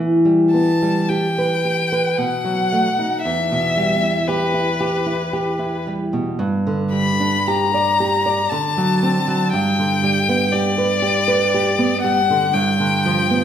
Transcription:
Already playing: E3
0.25 G3
0.52 B3 A5
0.82 G3
1.09 G4 G5
1.38 B4
1.65 G4
1.92 B4
2.18 B2 F#5
2.44 F#3
2.72 A3
2.99 D#4
3.22 E2 E5
3.52 B2
3.77 G3
4.03 E4
4.28 G4 B4
4.54 E4
4.80 G4
5.06 E4
5.33 G4
5.59 E4
5.87 G3
6.13 B2
6.39 G2
6.67 D3
6.92 G3 B5
7.20 D4
7.47 G4 A#5
7.74 D5
8.00 G4
8.26 D5
8.50 D3 A5
8.77 F#3
9.03 C4
9.28 F#3
9.53 G2 G5
9.79 D3
10.04 G3
10.29 B3
10.52 G4 D5
10.78 B4
11.02 G4
11.28 B4
11.54 G4
11.79 B3
12.02 G3 F#5
12.30 D3
12.54 G2 G5
12.80 D3
13.06 F3
13.31 B3

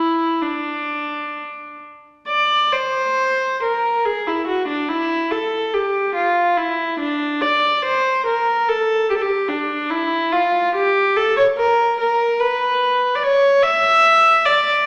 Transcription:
Already playing: E4
0.41 D4
2.28 D5
2.73 C5
3.63 A#4
4.05 G#4
4.27 E4
4.47 F#4
4.68 D4
4.89 E4
5.31 A4
5.74 G4
6.15 F4
6.57 E4
6.99 D4
7.41 D5
7.85 C5
8.26 A#4
8.69 A4
9.10 G4
9.16 A4
9.21 G4
9.49 D4
9.90 E4
10.32 F4
10.75 G4
11.16 A4
11.37 C#5
11.57 A#4
12.00 A#4
12.40 B4
13.15 D5
13.23 C#5
13.63 E5
14.45 D5

